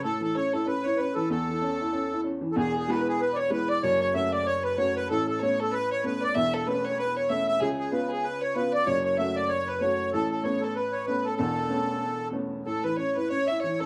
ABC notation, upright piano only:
X:1
M:4/4
L:1/8
Q:"Swing" 1/4=190
K:A
V:1 name="Upright piano"
A,, E, C E C E C E, | E,, E, C E C E C E, | [E,,,E,,]2 [G,B,E]2 z2 [G,B,E]2 | [F,,,F,,]2 [A,CF]2 z2 [A,CF]2 |
[A,,,A,,]2 [A,B,C]2 z2 [A,B,C]2 | [E,,,E,,]2 [A,B,C]2 z2 [A,B,C]2 | [C,,C,]2 [B,C^E]2 z2 [B,CE]2 | [F,,,F,,]2 [A,CF]2 z2 [A,CF]2 |
[A,,,A,,]2 [A,B,C]2 z2 [A,B,C]2 | [E,,,E,,]2 [A,B,C]2 z2 [A,B,C]2 | A,, E, C E C E E, C |]